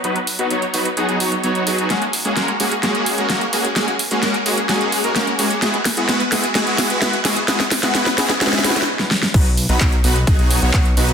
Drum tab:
CC |--------------------------------|--------------------------------|--------------------------------|--------------------------------|
HH |x-x-o-x-x-x-o-x-x-x-o-x-x-x-o-x-|x-x-o-x-x-x-o-x-x-x-o-x-x-x-o-x-|x-x-o-x-x-x-o-x-x-x-o-x-x-x-o-x-|x-x-o-x-x-x-o-x-x-x-o-x-x-x-o-x-|
CP |--------------------------------|--------------------------------|--------------------------------|--------------------------------|
SD |--------------------------------|o-------o-------o-------o-------|o-------o-------o-------o-------|o---o---o---o---o---o---o---o---|
BD |--------------------------------|--------------------------------|--------------------------------|--------------------------------|

CC |--------------------------------|x-------------------------------|
HH |x-x-o-x-x-x-o-x-x-x-o-x---------|x-x-o-x-x-x-o-x-x-x-o-x-x-x-o-x-|
CP |--------------------------------|--------x---------------x-------|
SD |o-o-o-o-o-o-o-o-oooooooo--o-o-o-|--------------------------------|
BD |--------------------------------|o-------o-------o-------o-------|